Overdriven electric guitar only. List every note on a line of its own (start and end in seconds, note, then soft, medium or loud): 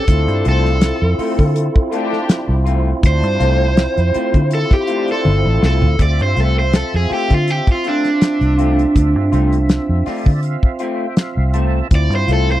0.00 0.45 A4 medium
0.49 2.65 A4 loud
3.07 4.49 C5 loud
4.55 4.73 A4 medium
4.73 5.09 G4 medium
5.12 5.63 A4 medium
5.66 6.00 A4 medium
6.02 6.20 D5 loud
6.23 6.40 C5 medium
6.40 6.58 A4 medium
6.59 6.74 C5 medium
6.76 6.94 A4 medium
6.96 7.12 G#4 medium
7.13 7.34 G4 medium
7.34 7.50 F4 medium
7.50 7.69 G4 medium
7.72 7.86 F4 medium
7.88 10.04 D4 medium
11.95 12.13 D5 loud
12.15 12.30 C5 medium
12.33 12.50 A4 medium
12.52 12.60 C5 medium